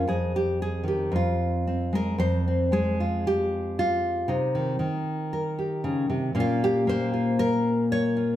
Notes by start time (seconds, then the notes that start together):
0.07 F2 G#4
0.36 G4
0.62 G#4
0.84 D#3
0.88 G4
1.12 F2 F4
1.67 C4
1.93 G#3 A#4
2.18 F2 C5
2.48 C4
2.72 G#3 G#4
3.00 F4
3.27 G4
3.79 F4
4.28 C3 D#4
4.55 D#3
4.79 D#3
5.33 A#4
5.59 G4
5.84 C#3
6.10 C3
6.35 A#2 A#3 C#4
6.40 F4
6.64 G4
6.87 A#3 C5
7.13 F4
7.39 A#4
7.92 C#5
8.17 F4